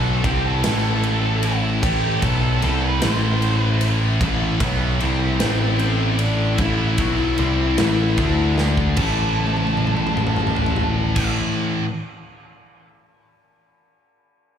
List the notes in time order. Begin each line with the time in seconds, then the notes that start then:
Already playing: B1 B2 F#3 A3 B3 A4 E5 A5
0.24 C2 C3 G3 C4 G4 G5, kick, ride
0.45 A4 A5
0.64 A1 A2 E3 A3, snare, ride
1.03 ride
1.43 E4 E5, ride
1.81 A1 A2 E3 A3 G4 G5, kick, ride
2.21 B1 B2 F#3 B3 A4 A5, kick, ride
2.62 C2 C3 G3 C4 A4 A5, ride
2.82 B4 B5
3.01 A1 A2 E3 A3 C5 C6, snare, ride
3.42 ride
3.61 B5
3.81 ride
4.20 A1 A2 E3 A3 B5, kick, ride
4.60 B1 B2 F#3 B3, kick, ride
5.00 C2 C3 G3 C4, ride
5.40 A1 A2 E3 A3 C4 C5, snare, ride
5.78 C4 C5, ride
6.15 D4 D5, ride
6.55 E4 E5, kick, ride
6.59 A1 A2 E3 A3
6.98 B1 B2 F#3 B3, kick, ride
7.38 C2 C3 G3 C4, ride
7.78 A1 A2 E3 A3, snare, ride
8.17 D2 D3 A3 D4 D5 A5, kick, ride
8.58 snare
8.77 kick
8.97 A1 A2 E3 A3 E4 C5 E5 A5, kick, crash
9.01 A3
9.37 high tom
9.47 high tom
9.57 high tom
9.67 high tom
9.77 mid tom
9.87 mid tom
9.97 mid tom
10.07 mid tom
10.17 mid tom
10.27 mid tom
10.36 mid tom
10.47 mid tom
10.56 floor tom
10.66 floor tom
10.76 floor tom
11.16 kick, crash